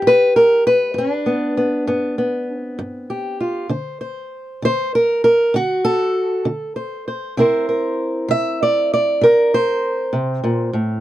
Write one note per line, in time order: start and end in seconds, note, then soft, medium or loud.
0.00 0.58 G2 medium
0.00 0.66 G4 loud
0.07 0.36 B4 loud
0.36 0.66 A#4 medium
0.67 1.57 B4 medium
0.94 1.50 G2 medium
0.98 2.57 D4 medium
1.26 1.56 B3 soft
1.57 1.87 B3 soft
1.87 2.42 G2 medium
1.87 2.17 B3 soft
2.18 3.67 B3 soft
2.57 3.40 C4 medium
2.79 3.34 G2 medium
3.10 3.67 G4 soft
3.41 3.67 F4 soft
3.69 4.25 D3 medium
3.69 4.00 C5 soft
4.01 4.65 C5 soft
4.62 5.18 D3 medium
4.62 4.94 C5 loud
4.95 5.23 A#4 medium
5.24 5.54 A#4 medium
5.54 6.09 D3 medium
5.54 6.47 F#4 medium
5.85 6.76 A4 medium
6.45 7.01 D3 medium
6.76 7.06 C5 soft
7.08 7.34 C5 soft
7.37 7.93 C3 medium
7.37 11.00 C4 medium
7.37 11.00 E4 medium
7.37 7.68 A#4 soft
7.37 8.30 C5 medium
7.69 9.22 A#4 soft
8.28 8.84 C3 medium
8.28 8.61 E5 loud
8.63 8.92 D5 medium
8.94 9.53 D5 medium
9.21 9.76 C3 medium
9.21 10.14 A#4 medium
9.54 10.75 C5 medium
10.13 10.43 C3 medium
10.44 10.73 A#2 medium
10.73 11.00 A2 medium